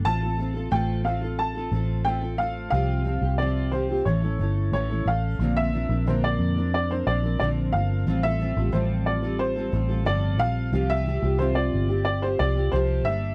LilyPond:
<<
  \new Staff \with { instrumentName = "Upright piano" } { \time 4/4 \key c \mixolydian \tempo 4 = 90 a''4 g''8 f''8 a''4 g''8 f''8 | f''4 d''8 c''8 cis''4 cis''8 f''8~ | f''16 e''8. c''16 d''8. d''16 c''16 d''8 d''8 f''8~ | f''16 e''8. c''8 d''8 c''4 d''8 f''8~ |
f''16 e''8. c''16 d''8. d''16 c''16 d''8 c''8 e''8 | }
  \new Staff \with { instrumentName = "Steel-string acoustic guitar" } { \time 4/4 \key c \mixolydian <a c' f' a'>16 <c' f' a'>16 <a c' f' a'>16 <c' f' a'>16 <a c' f' a'>8 <a c' f' a'>16 <c' f' a'>8 <c' f' a'>16 <a c' f' a'>8 <a c' f' a'>16 <c' f' a'>16 <a c' f' a'>8 | <c f c' f' g'>8 <f c' f' g'>16 <c' f' g'>16 <c f c' f' g'>8 <f c' f' g'>16 <c' f' g'>16 <a, e a cis' e' a'>16 <a cis' e' a'>16 <a cis' e' a'>8 <a, e a cis' e' a'>16 <a cis' e' a'>16 <a cis' a'>8 | <bes, d f c' d' bes'>8 <f c' d' bes'>16 <f c' d' bes'>16 <bes, d f c' d' bes'>8. <f c' d' bes'>8 <f c' d' bes'>16 <f c' d' bes'>16 <f c' d' bes'>16 <bes, d f c' d' bes'>8 <f c' d' bes'>8 | <a, f g c' f' a'>16 <g c' f' a'>16 <g c' f' a'>16 <g c' f' a'>16 <a, f g c' f' a'>8. <g c' f' a'>8 <g c' f' a'>16 <g c' f' a'>16 <g c' f' a'>16 <a, f g c' f' a'>8 <g c' f' a'>8 |
<c f c' f' g'>8 <f c' f' g'>16 <c' f' g'>16 <c f c' f' g'>8. <c' f' g'>8 <c' f' g'>16 <f c' f' g'>16 <c' f' g'>16 <c f c' f' g'>8 <g bes d' g'>8 | }
  \new Staff \with { instrumentName = "Fingered electric bass" } { \clef bass \time 4/4 \key c \mixolydian a,,4 a,,4. a,,4. | c,8. c,4~ c,16 a,,8 g,,8 a,,8 a,,8 | bes,,8. bes,,8. f,4 bes,,8 bes,,8 g,,8 | a,,8. a,,16 a,,4. a,,8 g,,8 bes,,8 |
c,8. c,8. g,,4 c,8 c,8 g,,8 | }
>>